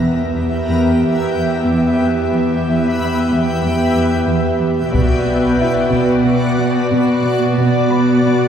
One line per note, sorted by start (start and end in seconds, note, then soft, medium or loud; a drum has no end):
0.00 0.32 E1 soft
0.00 4.94 E2 soft
0.00 0.22 E3 soft
0.00 4.90 B3 soft
0.00 0.98 D4 soft
0.00 4.89 G4 soft
0.00 4.90 B4 soft
0.00 4.94 E5 soft
0.00 4.94 G5 soft
0.00 0.98 D6 soft
0.35 0.55 E2 soft
0.67 0.87 E2 medium
1.01 1.21 E2 soft
1.33 1.53 E2 soft
1.67 1.87 E2 medium
2.00 2.20 E2 soft
2.33 2.52 E2 soft
2.66 2.85 E3 soft
2.99 3.18 E2 soft
3.32 3.51 E2 medium
3.63 3.82 E2 soft
3.94 4.14 E2 soft
4.27 4.47 E2 medium
4.61 4.80 E2 soft
4.93 5.55 B1 medium
4.93 5.13 B2 medium
4.93 8.48 B2 soft
4.93 8.48 B3 medium
4.93 8.48 F#4 medium
4.93 8.48 B4 soft
4.93 8.48 D5 soft
4.93 8.48 D5 medium
4.93 8.48 F#5 medium
4.93 taiko soft
5.27 5.47 B3 soft
5.59 5.79 B2 soft
5.59 7.53 E4 soft
5.59 7.54 E5 soft
5.91 6.11 B2 medium
5.91 taiko soft
6.24 6.44 B2 soft
6.58 6.77 B2 soft
6.90 7.10 B2 medium
7.23 7.43 B2 soft
7.57 7.77 B2 medium
7.89 8.09 B3 soft
7.89 8.48 B5 soft
8.23 8.43 B2 soft